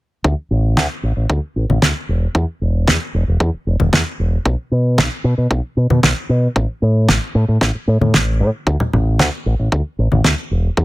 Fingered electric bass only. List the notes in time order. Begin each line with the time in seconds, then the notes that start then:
0.24 D2
0.51 A1
0.77 D2
1.03 A1
1.17 A1
1.30 D2
1.56 A1
1.69 A1
1.82 D2
2.09 E1
2.35 E2
2.61 E1
2.87 E2
3.14 E1
3.28 E1
3.40 E2
3.54 muted fingered electric bass stroke
3.67 E1
3.80 E1
3.93 E2
4.19 E1
4.46 B1
4.71 B2
4.98 B1
5.24 B2
5.38 B2
5.51 B1
5.77 B2
5.90 B2
6.03 B1
6.29 B2
6.56 A1
6.82 A2
7.09 A1
7.35 A2
7.48 A2
7.61 A1
7.75 muted fingered electric bass stroke
7.87 A2
8.01 A2
8.14 A1
8.40 A2
8.67 D2
8.93 A1
9.19 D2
9.46 A1
9.59 A1
9.72 D2
9.98 A1
10.12 A1
10.25 D2
10.51 E1
10.77 E2